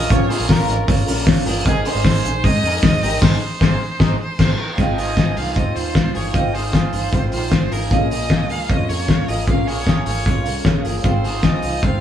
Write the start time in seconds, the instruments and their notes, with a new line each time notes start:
Already playing: upright piano A#3 C#4 A#4, clean electric guitar G#4, violin D#5, glockenspiel D#6
0.09 fingered electric bass A#1, steel-string acoustic guitar A#2 F3 A#3 C#4 F4 A#4, violin C#5, glockenspiel C#6, kick, hi-hat pedal, open hi-hat
0.28 steel-string acoustic guitar A#3 C#4 F4 A#4, clean electric guitar G#4, violin C5, glockenspiel C6, hi-hat pedal, open hi-hat
0.40 fingered electric bass A#1
0.48 steel-string acoustic guitar A#2 F3 A#3 C#4 F4 A#4, violin A#4, glockenspiel A#5, kick, snare, hi-hat pedal, open hi-hat
0.67 fingered electric bass G#1, steel-string acoustic guitar A#3 C#4 F4 A#4, hi-hat pedal, open hi-hat
0.87 steel-string acoustic guitar A#3 C#4 F4 A#4, kick, hi-hat pedal, open hi-hat
1.06 fingered electric bass A#1, steel-string acoustic guitar A#3 C#4 F4 A#4, hi-hat pedal, open hi-hat
1.26 fingered electric bass G#1, steel-string acoustic guitar A#2 F3 A#3 C#4 F4 A#4, kick, snare, hi-hat pedal, open hi-hat
1.46 fingered electric bass G1, steel-string acoustic guitar A#3 C#4 F4 A#4, clean electric guitar G#4, hi-hat pedal, open hi-hat
1.64 fingered electric bass G#1, steel-string acoustic guitar G#3 A#3 D#4 G#4 C5, upright piano C4 D#4 G#4 A#4, violin G#4, glockenspiel G#5, kick, hi-hat pedal, open hi-hat
1.84 steel-string acoustic guitar D#4 G#4 C5, violin C5, glockenspiel C6, hi-hat pedal, open hi-hat
1.95 fingered electric bass G#1
2.04 steel-string acoustic guitar G#3 A#3 D#4 G#4 C5, kick, snare, hi-hat pedal, open hi-hat
2.24 fingered electric bass A#1, steel-string acoustic guitar D#4 G#4 C5, hi-hat pedal, open hi-hat
2.43 fingered electric bass G#2, steel-string acoustic guitar A#3 D#4 G#4 C5, violin D#5, glockenspiel D#6, kick, hi-hat pedal, open hi-hat
2.62 fingered electric bass F2, steel-string acoustic guitar D#4 G#4 C5, hi-hat pedal, open hi-hat
2.82 fingered electric bass D#2, steel-string acoustic guitar G#3 A#3 D#4 G#4 C5, violin D#5, glockenspiel D#6, kick, snare, hi-hat pedal, open hi-hat
3.02 fingered electric bass G#1, steel-string acoustic guitar D#4 G#4 C5, clean electric guitar G4 A#4, hi-hat pedal, open hi-hat
3.21 fingered electric bass G#1, steel-string acoustic guitar G#3 A#3 D#4 G#4 C5, violin C5, kick, snare, crash
3.60 fingered electric bass G#1, steel-string acoustic guitar G#3 A#3 D#4 G#4 C5, kick, snare
3.99 fingered electric bass G#1, steel-string acoustic guitar A#3 D#4 G#4 C5, kick, snare
4.21 violin C5
4.38 fingered electric bass G#1, steel-string acoustic guitar G#3 A#3 D#4 G#4 C5, kick, snare, crash
4.60 violin A#4
4.74 steel-string acoustic guitar G#3, upright piano C4, violin F5
4.78 fingered electric bass G#1, clean electric guitar C4, steel-string acoustic guitar D#4 F4 C5, upright piano F4 G#4, violin D#5, kick, closed hi-hat
4.97 steel-string acoustic guitar D#4 F4 C5, clean electric guitar G#4, violin D#5, open hi-hat
5.16 steel-string acoustic guitar G#3 D#4 F4 C5, clean electric guitar G#4, kick, snare, closed hi-hat
5.36 fingered electric bass C2, steel-string acoustic guitar D#4 F4 C5, violin F5, open hi-hat
5.55 fingered electric bass D#2, steel-string acoustic guitar G#3 D#4 F4 C5, clean electric guitar C4, violin D#5, kick, closed hi-hat
5.74 fingered electric bass D#2, steel-string acoustic guitar D#4 F4 C5, violin C5, open hi-hat
5.95 fingered electric bass C2, steel-string acoustic guitar G#3 D#4 F4 C5, kick, snare, closed hi-hat
6.15 fingered electric bass G1, steel-string acoustic guitar D#4 F4 C5, clean electric guitar G#4, violin C#5, open hi-hat
6.34 fingered electric bass G#1, steel-string acoustic guitar G#3 D#4 F4 C5, clean electric guitar C4, violin D#5, kick, closed hi-hat
6.52 steel-string acoustic guitar D#4 F4 C5, clean electric guitar G#4, violin C5, open hi-hat
6.73 steel-string acoustic guitar G#3 D#4 F4 C5, clean electric guitar G#4, kick, snare, closed hi-hat
6.92 fingered electric bass G1, steel-string acoustic guitar D#4 F4 C5, violin C5, open hi-hat
7.12 steel-string acoustic guitar G#3 D#4 F4 C5, clean electric guitar C4, kick, closed hi-hat
7.32 fingered electric bass A#1, steel-string acoustic guitar D#4 F4 C5, violin C5, open hi-hat
7.52 fingered electric bass G#1, steel-string acoustic guitar G#3 D#4 F4 C5, kick, snare, closed hi-hat
7.71 fingered electric bass G#1, steel-string acoustic guitar D#4 F4 C5, clean electric guitar G#4, violin A#4, open hi-hat
7.89 fingered electric bass A#1, upright piano A#3 C#4 G#4, steel-string acoustic guitar A#3 C#4 G#4 A#4 F5, clean electric guitar F4, violin D#5, kick, closed hi-hat
8.10 clean electric guitar F4, steel-string acoustic guitar G#4 A#4 F5, violin D#5, open hi-hat
8.30 steel-string acoustic guitar A#3 C#4 G#4 A#4 F5, clean electric guitar F4, kick, snare, closed hi-hat
8.49 fingered electric bass C#2, steel-string acoustic guitar G#4 A#4 F5, violin F5, open hi-hat
8.69 fingered electric bass F2, steel-string acoustic guitar C#4 G#4 A#4 F5, clean electric guitar F4, violin D#5, kick, closed hi-hat
8.88 fingered electric bass F2, steel-string acoustic guitar G#4 A#4 F5, violin C#5, open hi-hat
9.08 fingered electric bass C#2, steel-string acoustic guitar A#3 C#4 G#4 A#4 F5, kick, snare, closed hi-hat
9.28 fingered electric bass G#1, clean electric guitar F4, steel-string acoustic guitar G#4 A#4 F5, violin D#5, open hi-hat
9.47 fingered electric bass A#1, steel-string acoustic guitar A#3 C#4 G#4 A#4 F5, clean electric guitar F4, violin F5, kick, closed hi-hat
9.67 clean electric guitar F4, steel-string acoustic guitar G#4 A#4 F5, violin C#5, open hi-hat
9.87 steel-string acoustic guitar A#3 C#4 G#4 A#4 F5, clean electric guitar F4, kick, snare, closed hi-hat
10.06 fingered electric bass G#1, steel-string acoustic guitar G#4 A#4 F5, violin C#5, open hi-hat
10.25 fingered electric bass A#1, steel-string acoustic guitar C#4 G#4 A#4 F5, clean electric guitar F4, kick, closed hi-hat
10.44 fingered electric bass C2, steel-string acoustic guitar G#4 A#4 F5, open hi-hat
10.65 fingered electric bass A#1, steel-string acoustic guitar A#3 C#4 G#4 A#4 F5, upright piano A#3 C#4 G#4, kick, snare, closed hi-hat
10.84 fingered electric bass G1, clean electric guitar F4, steel-string acoustic guitar G#4 A#4 F5, open hi-hat
11.03 fingered electric bass G#1, steel-string acoustic guitar G#3 D#4 F4, upright piano C4 F4 G#4, clean electric guitar C4, violin C5, kick, closed hi-hat
11.07 steel-string acoustic guitar C5
11.24 steel-string acoustic guitar D#4 F4 C5, clean electric guitar G#4, open hi-hat
11.43 steel-string acoustic guitar G#3 D#4 F4 C5, clean electric guitar G#4, violin D#5, kick, snare, closed hi-hat
11.62 fingered electric bass C2, steel-string acoustic guitar D#4 F4 C5, open hi-hat
11.83 fingered electric bass D#2, steel-string acoustic guitar G#3 D#4 F4 C5, clean electric guitar C4, violin F5, kick, closed hi-hat